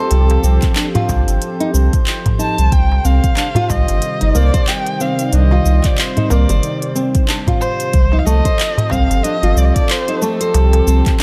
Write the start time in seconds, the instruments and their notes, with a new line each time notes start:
Already playing: analog synth pad F3 C4 G4 A4, kamancheh A4, nylon-string guitar C5, synth texture C5
0.11 sub bass C2, closed hi-hat, darbuka tek, cabasa
0.30 closed hi-hat, darbuka tek
0.43 sub bass C2, nylon-string guitar C4, cabasa
0.62 kick, clap, closed hi-hat, cabasa
0.76 nylon-string guitar D4, clap, closed hi-hat, cabasa
0.95 nylon-string guitar F4, closed hi-hat, darbuka dum
1.09 sub bass C2, kick, darbuka tek, cabasa
1.28 sub bass G1, closed hi-hat, darbuka ka, cabasa
1.42 closed hi-hat, cabasa
1.60 nylon-string guitar D#4, closed hi-hat
1.73 sub bass C2, nylon-string guitar C4, cabasa
1.93 kick, closed hi-hat, cabasa
2.07 clap, closed hi-hat, cabasa
2.26 kick, closed hi-hat, darbuka ka, darbuka dum
2.39 nylon-string guitar D#4, kamancheh A5, cabasa
2.58 sub bass C2, closed hi-hat, cabasa
2.72 sub bass C2, analog synth pad C3, kamancheh G5, kick, closed hi-hat, cabasa
2.90 analog synth pad G3, darbuka tek
3.05 sub bass C2, nylon-string guitar C4, kamancheh F5, cabasa
3.24 kick, closed hi-hat, cabasa
3.35 analog synth pad D#3, nylon-string guitar D4, clap, closed hi-hat, darbuka tek, cabasa
3.55 nylon-string guitar F4, closed hi-hat, darbuka dum
3.70 sub bass C2, kamancheh D#5, kick, darbuka tek, cabasa
3.88 sub bass G1, closed hi-hat, darbuka ka, cabasa
4.02 closed hi-hat, cabasa
4.21 sub bass G1, nylon-string guitar D#4, closed hi-hat
4.35 sub bass C2, nylon-string guitar A#3, kamancheh D5, cabasa
4.54 nylon-string guitar C5, kick, closed hi-hat, cabasa
4.68 kamancheh G5, clap, closed hi-hat, cabasa
4.87 closed hi-hat
5.00 nylon-string guitar C4, kamancheh F5, cabasa
5.19 closed hi-hat, cabasa
5.33 sub bass C2, nylon-string guitar D4, kamancheh D#5, closed hi-hat, cabasa
5.51 nylon-string guitar F4, darbuka tek
5.65 sub bass C2, cabasa
5.84 kamancheh D5, kick, clap, closed hi-hat, cabasa
5.98 kamancheh C5, clap, closed hi-hat, cabasa
6.17 nylon-string guitar D#4, closed hi-hat, darbuka dum
6.30 sub bass C2, nylon-string guitar A#3, kamancheh D5, darbuka tek, cabasa
6.49 sub bass G1, nylon-string guitar C5, closed hi-hat, darbuka ka, cabasa
6.63 closed hi-hat, cabasa
6.82 closed hi-hat
6.95 nylon-string guitar C4, cabasa
7.15 kick, closed hi-hat, cabasa
7.28 nylon-string guitar D4, clap, closed hi-hat, cabasa
7.47 nylon-string guitar F4, kick, closed hi-hat, darbuka ka, darbuka dum
7.61 kamancheh C5, cabasa
7.80 closed hi-hat, cabasa
7.93 sub bass C2, analog synth pad F3, kick, closed hi-hat, cabasa
8.12 nylon-string guitar D#4, darbuka tek
8.19 kamancheh F5
8.25 sub bass C2, nylon-string guitar A3, analog synth pad C4 A4, kamancheh D#5, cabasa
8.45 nylon-string guitar C5, kick, closed hi-hat, cabasa
8.59 clap, closed hi-hat, darbuka tek, cabasa
8.65 analog synth pad G4
8.78 closed hi-hat, darbuka dum
8.90 sub bass C2, nylon-string guitar C4, kamancheh F5, kick, darbuka tek, cabasa
9.10 sub bass G1, closed hi-hat, darbuka ka, cabasa
9.24 nylon-string guitar D4, kamancheh D#5, closed hi-hat, cabasa
9.43 sub bass G1, nylon-string guitar F4, closed hi-hat
9.56 sub bass C2, kamancheh D5, cabasa
9.65 kamancheh D#5
9.74 kamancheh D5, kick, closed hi-hat, cabasa
9.89 kamancheh C5, clap, closed hi-hat, cabasa
10.08 nylon-string guitar D#4, closed hi-hat
10.22 nylon-string guitar A3, kamancheh A4, cabasa
10.41 nylon-string guitar C5, closed hi-hat, cabasa
10.54 sub bass C2, closed hi-hat, darbuka tek, cabasa
10.73 closed hi-hat, darbuka tek
10.87 sub bass C2, nylon-string guitar C4, darbuka ka, cabasa
11.06 kick, clap, closed hi-hat, cabasa
11.20 nylon-string guitar D4, darbuka tek